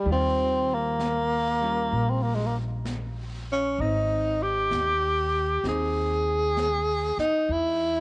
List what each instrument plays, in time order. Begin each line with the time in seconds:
0.05 upright bass D#2, hollow-body jazz guitar D#3 G3, brush sweep
0.11 tenor saxophone C4, hollow-body jazz guitar F4
0.74 tenor saxophone A#3
0.99 brush sweep, snare, hi-hat pedal
1.61 hollow-body jazz guitar G3 C#4 F4
1.92 upright bass A#1, brush sweep
2.10 tenor saxophone C4
2.23 tenor saxophone A#3
2.35 tenor saxophone G#3
2.46 tenor saxophone A#3
2.85 brush sweep, snare, hi-hat pedal
3.52 tenor saxophone C#4
3.78 upright bass G#1, hollow-body jazz guitar C4 D#4, tenor saxophone D#4, brush sweep
4.43 tenor saxophone G4
4.71 upright bass D#2, brush sweep, snare, hi-hat pedal
5.63 upright bass D#2, hollow-body jazz guitar C4 D#4, brush sweep, snare
5.69 tenor saxophone G#4
6.57 brush sweep, snare, hi-hat pedal
7.17 tenor saxophone D#4, muted upright bass stroke, snare
7.49 upright bass E2, tenor saxophone E4, brush sweep